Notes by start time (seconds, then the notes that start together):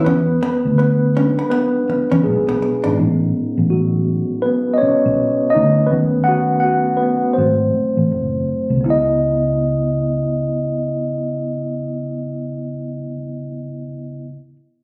0.04 E2 B3 C#4 B4
0.43 B3
0.65 D2
0.78 B3 B4, muted hollow-body jazz guitar stroke
1.15 F#3 G#3 C#4 D4
1.39 B3
1.50 B3 B4
1.89 muted fingered electric bass stroke, muted hollow-body jazz guitar stroke
2.12 E2 C#4
2.24 B1 G#3 G#4
2.49 B3
2.62 muted hollow-body jazz guitar stroke
2.84 G#1 D4
2.98 A1 G#3 B3 C#4 D#4
3.58 A1
3.70 F#3 F#4
4.42 B3 B4
4.74 D#5
4.78 C#4 C#5
4.83 muted fingered electric bass stroke
5.05 B1
5.50 D#5
5.55 D2 D#4
5.87 F#3 B4
5.91 D#2 A3 B3 C#4
6.24 F#5
6.28 F#4
6.60 F#5
6.64 F#4
6.97 B4
7.01 B3
7.33 F#3 A3 C5
7.38 G#1 C4
7.74 muted fingered electric bass stroke
7.97 A1
8.11 F#1
8.70 C2
8.76 C#3
8.81 C#2 B3
8.86 E4
8.90 D#5